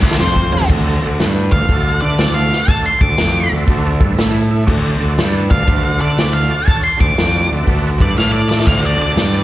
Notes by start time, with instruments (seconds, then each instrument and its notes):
0.03 fingered electric bass D2, tonewheel organ A3 D4 F#4 A4, lead electric guitar F#4 D5, kick
0.11 snare
0.20 fingered electric bass F2, tonewheel organ F3 C4 F4 C5, lead electric guitar C5, snare
0.36 kick
0.52 tonewheel organ F3 C4 F4 C5, floor tom
0.61 floor tom
0.69 fingered electric bass D2, tonewheel organ A3 D4 F#4 A4, kick, crash
1.01 fingered electric bass D2, tonewheel organ A3 D4 F#4 A4
1.19 fingered electric bass G2, tonewheel organ A3 D4 F#4 B4, snare, open hi-hat
1.52 fingered electric bass D2, tonewheel organ A3 D4 F#4 A4, lead electric guitar F5, kick
1.68 fingered electric bass D2, tonewheel organ A3 D4 F#4 A4, kick, open hi-hat
2.01 fingered electric bass D3, tonewheel organ A3 D4 F#4 B4, lead electric guitar D5
2.18 fingered electric bass D2, tonewheel organ A3 D4 F#4 A4, snare, open hi-hat
2.34 lead electric guitar F5
2.50 tonewheel organ A3 D4 F#4 B4, snare
2.67 tonewheel organ A3 D4 F#4 A4, lead electric guitar A5, kick, open hi-hat
2.86 lead electric guitar C6
3.01 fingered electric bass D2, tonewheel organ A3 D4 F#4 A4, lead electric guitar D6, kick
3.17 fingered electric bass F2, tonewheel organ A3 D4 F#4 B4, snare, open hi-hat
3.50 fingered electric bass D2, tonewheel organ A3 D4 F#4 A4
3.66 fingered electric bass D2, tonewheel organ A3 D4 F#4 A4, kick, open hi-hat
3.99 fingered electric bass G2, tonewheel organ A3 D4 F#4 A4, kick
4.16 fingered electric bass A2, tonewheel organ A3 E4 A4 E5, snare, open hi-hat
4.51 tonewheel organ A3 E4 A4 E5
4.66 fingered electric bass D2, tonewheel organ D4 F#4 A4 D5, kick, crash
5.00 fingered electric bass D2, tonewheel organ D4 F#4 A4 D5
5.18 fingered electric bass G2, tonewheel organ D4 F#4 A4 D5, snare, open hi-hat
5.49 fingered electric bass D2, tonewheel organ D4 F#4 A4 D5, lead electric guitar F5, kick
5.65 fingered electric bass D2, tonewheel organ D4 F#4 A4 B4, kick, open hi-hat
5.98 fingered electric bass D3, tonewheel organ D4 F#4 A4 E5, lead electric guitar D5
6.14 tonewheel organ D4 F#4 A4 B4
6.18 fingered electric bass D2, snare, open hi-hat
6.33 lead electric guitar F5
6.49 tonewheel organ D4 F#4 A4 D5
6.64 tonewheel organ D4 F#4 A4 C#5, lead electric guitar A5
6.68 kick, open hi-hat
6.83 lead electric guitar C6
6.96 fingered electric bass D2, tonewheel organ D4 F#4 A4 D5
7.01 lead electric guitar D6, kick
7.13 tonewheel organ D4 F#4 A4 D5
7.18 fingered electric bass F2, snare, open hi-hat
7.46 tonewheel organ D4 F#4 A4 D5
7.52 fingered electric bass D2
7.62 tonewheel organ D4 F#4 A4 B4
7.67 fingered electric bass D2, kick, open hi-hat
7.97 fingered electric bass G2, tonewheel organ D4 F#4 A4 B4, kick
8.02 lead electric guitar D5
8.14 tonewheel organ A3 E4 A4 E5
8.18 fingered electric bass A2, lead electric guitar F5, snare
8.32 lead electric guitar D5
8.47 tonewheel organ A3 E4 A4 E5, lead electric guitar D5, snare
8.60 snare
8.64 fingered electric bass D2, tonewheel organ D4 F#4 A4 D5, lead electric guitar F5, kick, crash, splash
8.86 lead electric guitar D5
8.97 tonewheel organ D4 F#4 A4 D5
9.01 fingered electric bass D2, lead electric guitar D5
9.13 fingered electric bass G2, tonewheel organ D4 F#4 A4 D5, open hi-hat
9.17 snare